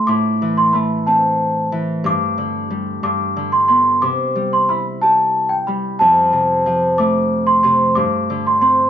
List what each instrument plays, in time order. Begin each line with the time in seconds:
Already playing: harp D3 A3 D4 F4
0.07 harp A2, celesta D6
0.42 harp E3
0.57 celesta C6
0.73 harp A3, celesta B5
1.07 harp C4, celesta A5
1.72 harp E3
2.04 harp G2, celesta D6
2.38 harp D3
2.70 harp G3
3.03 harp G2, celesta D6
3.37 harp D3
3.52 celesta C6
3.68 harp B3, celesta C6
4.02 harp C3, celesta D6
4.36 harp G3
4.53 celesta C6
4.69 harp E4, celesta B5
5.02 harp G4, celesta A5
5.49 celesta G5
5.67 harp G3, celesta B5
5.99 harp F2, celesta A5
6.33 harp C3
6.66 harp F3
6.98 harp A3, celesta D6
7.47 celesta C6
7.63 harp C3, celesta C6
7.95 harp G2, celesta D6
8.30 harp D3
8.47 celesta C6
8.61 harp C4, celesta C6